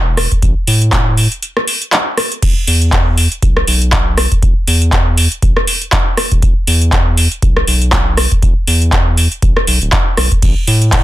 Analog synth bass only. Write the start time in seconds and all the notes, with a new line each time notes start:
Already playing: E1
0.42 A1
0.67 A2
2.42 E1
2.67 E2
3.42 B1
3.67 B1
4.42 E1
4.67 E2
5.42 A1
6.32 E1
6.42 E1
6.67 E2
7.42 B1
7.67 B1
8.42 E1
8.67 E2
9.42 A1
9.67 B1
9.82 D1
10.17 B1
10.42 A1
10.67 A2